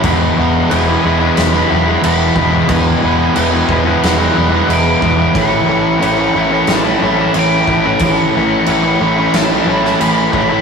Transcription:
<<
  \new Staff \with { instrumentName = "Lead electric guitar" } { \time 4/4 \key a \major \tempo 4 = 90 r4 gis''4 b''4 b''4 | gis''4 gis''4 fis''4 d'''4 | cis'''4 cis'''8 cis'''8 a''4 d'''4 | cis'''4 cis'''8 cis'''8 a''4 b''4 | }
  \new Staff \with { instrumentName = "Overdriven electric guitar" } { \time 4/4 \key a \major <e, b, e gis b e'>8 <e gis b e'>8 <e, b, e gis b e'>16 <e gis b e'>16 <e gis b e'>16 <e gis b e'>8 <e gis b e'>16 <e gis b e'>16 <e gis b e'>16 <e, b, e gis b e'>8 <e gis b e'>16 <e gis b e'>16 | <e, b, e gis b e'>8 <e gis b e'>8 <e, b, e gis b e'>16 <e gis b e'>16 <e gis b e'>16 <e gis b e'>8 <e gis b e'>16 <e gis b e'>16 <e gis b e'>16 <e, b, e gis b e'>8 <e gis b e'>16 <e gis b e'>16 | <a, e a cis' e'>8 <e a cis' e'>8 <a, e a cis' e'>16 <a cis' e'>16 <e a cis' e'>16 <a cis' e'>8 <a cis' e'>16 <e a cis' e'>16 <a cis' e'>16 <a, e a cis' e'>8 <e a cis' e'>16 <a cis' e'>16 | <a, e a cis' e'>8 <e a cis' e'>8 <a, e a cis' e'>16 <a cis' e'>16 <e a cis' e'>16 <a cis' e'>8 <a cis' e'>16 <e a cis' e'>16 <a cis' e'>16 <a, e a cis' e'>8 <e a cis' e'>16 <a cis' e'>16 | }
  \new Staff \with { instrumentName = "Fingered electric bass" } { \clef bass \time 4/4 \key a \major e,,8 e,,8 e,,8 e,,8 e,,8 e,,8 e,,8 e,,8 | e,,8 e,,8 e,,8 e,,8 e,,8 e,,8 e,,8 e,,8 | a,,8 a,,8 a,,8 a,,8 a,,8 a,,8 a,,8 a,,8 | a,,8 a,,8 a,,8 a,,8 a,,8 a,,8 a,,8 a,,8 | }
  \new DrumStaff \with { instrumentName = "Drums" } \drummode { \time 4/4 <cymc bd>4 cymc4 <cymc sn>4 cymc8 bd8 | <cymc bd>4 cymc8 bd8 <cymc sn>4 cymc8 bd8 | <cymc bd>4 cymc4 <cymc sn>4 cymc8 bd8 | <cymc bd>4 cymc4 <cymc sn>8. sn16 cymc8 bd8 | }
>>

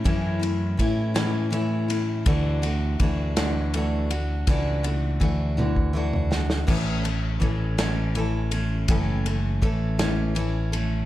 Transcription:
<<
  \new Staff \with { instrumentName = "Steel-string acoustic guitar" } { \time 6/8 \key a \major \tempo 4. = 54 <a, e a cis' e'>8 <a cis' e'>8 <e a cis' e'>8 <a, e a cis' e'>8 <e a cis' e'>8 <a cis' e'>8 | <d e a d' fis'>8 <a d' fis'>8 <e a d' fis'>8 <d e a d' fis'>8 <e a d' fis'>8 <a d' fis'>8 | <e a d' fis'>8 <a d' fis'>8 <e a d' fis'>8 <d e a d' fis'>8 <e a d' fis'>8 <a d' fis'>8 | <a, e a cis' a'>8 <a cis' a'>8 <e a cis' a'>8 <a, e a cis' a'>8 <e a cis' a'>8 <a cis' a'>8 |
<a, e a cis' a'>8 <a cis' a'>8 <e a cis' a'>8 <a, e a cis' a'>8 <e a cis' a'>8 <a cis' a'>8 | }
  \new Staff \with { instrumentName = "Fingered electric bass" } { \clef bass \time 6/8 \key a \major fis,4 a,2 | d,4 d,2 | cis,4 d,2 | a,,4 a,,2 |
fis,,4 a,,2 | }
  \new DrumStaff \with { instrumentName = "Drums" } \drummode { \time 6/8 <bd cymr>8 cymr8 <bd cymr>8 <cymr sn>8 cymr8 cymr8 | <bd cymr>8 cymr8 <bd cymr>8 <cymr sn>8 cymr8 cymr8 | <bd cymr>8 cymr8 <bd cymr>8 tommh16 bd8 toml16 sn16 sn16 | <cymc bd>8 cymr8 <bd cymr>8 <cymr sn>8 cymr8 cymr8 |
<bd cymr>8 cymr8 <bd cymr>8 <cymr sn>8 cymr8 cymr8 | }
>>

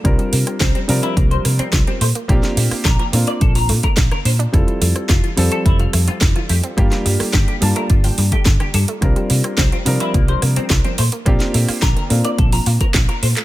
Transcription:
<<
  \new Staff \with { instrumentName = "Clean electric guitar" } { \time 4/4 \key bes \lydian \tempo 4 = 107 r4 c'16 c'16 r16 e'16 bes16 c''16 r16 c'16 r16 c'16 c''16 r16 | r4 bes'16 bes'16 r16 d''16 a'16 bes''16 r16 bes'16 r16 bes'16 c''16 r16 | r4 f'16 f'16 r16 a'16 e'16 f''16 r16 f'16 r16 f'16 g'16 r16 | r4 g'16 g'16 r16 bes'16 f'16 g''16 r16 g'16 r16 g'16 a'16 r16 |
r4 c'16 c'16 r16 e'16 bes16 c''16 r16 c'16 r16 c'16 c''16 r16 | r4 bes'16 bes'16 r16 d''16 a'16 bes''16 r16 bes'16 r16 bes'16 c''16 r16 | }
  \new Staff \with { instrumentName = "Grand piano" } { \time 4/4 \key bes \lydian <g c' d' f' bes'>4. <f g c' d' bes'>2 r8 | <bes c' d' f' g'>4. <bes c' d' f'>2~ <bes c' d' f'>8 | <g c' e' f' a'>4. <f g c' a'>2~ <f g c' a'>8 | <g bes d' f' g'>4. <g bes d' f' a''>2~ <g bes d' f' a''>8 |
<g c' d' f' bes'>4. <f g c' d' bes'>2 r8 | <bes c' d' f' g'>4. <bes c' d' f'>2~ <bes c' d' f'>8 | }
  \new Staff \with { instrumentName = "Synth arpeggio sound" } { \clef bass \time 4/4 \key bes \lydian f16 g16 bes16 c'16 f16 g16 bes16 c'16 f16 g16 bes16 c'16 f16 g16 a16 bes16 | d16 f16 a16 bes16 d16 f16 a16 bes16 d16 f16 a16 a16 d16 d16 d'16 d'16 | e16 f16 a16 c'16 e16 e16 a16 c'16 e16 f16 a16 c'16 e16 e16 a16 c'16 | d16 f16 g16 a16 d16 d16 g16 a16 d16 f16 g16 a16 d16 d16 g16 a16 |
f16 g16 bes16 c'16 f16 f16 bes16 c'16 f16 g16 bes16 c'16 f16 f16 a16 bes16 | d16 f16 a16 bes16 d16 d16 a16 bes16 d16 f16 f'16 f16 f16 f'16 a16 a16 | }
  \new Staff \with { instrumentName = "Fingered electric bass" } { \clef bass \time 4/4 \key bes \lydian c,8 c8 c,8 c8 c,8 c8 c,8 bes,8 | bes,,8 bes,8 bes,,8 bes,8 bes,,8 bes,8 bes,,8 bes,8 | f,,8 f,8 f,,8 f,8 f,,8 f,8 f,,8 f,8 | g,,8 g,8 g,,8 g,8 g,,8 g,8 g,,8 g,8 |
c,8 c8 c,8 c8 c,8 c8 c,8 bes,8 | bes,,8 bes,8 bes,,8 bes,8 bes,,8 bes,8 bes,,8 bes,8 | }
  \new DrumStaff \with { instrumentName = "Drums" } \drummode { \time 4/4 <hh bd ss>16 hh16 hho16 <hh ss>16 <hh bd sn>16 hh16 hho16 hh16 <hh bd>16 hh16 <hho ss>16 hh16 <hh bd sn>16 hh16 hho16 hh16 | <hh bd ss>16 <hh sn>16 hho16 <hho ss>16 <hh bd sn>16 hh16 hho16 hh16 <hh bd>16 hho16 hho16 <hh bd>16 <hh bd sn>16 <hh ss>16 hho16 hh16 | <hh bd ss>16 hh16 hho16 <hh ss>16 <hh bd sn>16 hh16 hho16 hh16 <hh bd>16 hh16 <hho ss>16 hh16 <hh bd sn>16 hh16 hho16 hh16 | <hh bd ss>16 <hh sn>16 hho16 <hho ss>16 <hh bd sn>16 hh16 hho16 hh16 <hh bd>16 hho16 hho16 <hh bd>16 <hh bd sn>16 <hh ss>16 hho16 hh16 |
<hh bd ss>16 hh16 hho16 <hh ss>16 <hh bd sn>16 hh16 hho16 hh16 <hh bd>16 hh16 <hho ss>16 hh16 <hh bd sn>16 hh16 hho16 hh16 | <hh bd ss>16 <hh sn>16 hho16 <hho ss>16 <hh bd sn>16 hh16 hho16 hh16 <hh bd>16 hho16 hho16 <hh bd>16 <hc hh bd sn>16 hh16 hho16 <hc hh>16 | }
>>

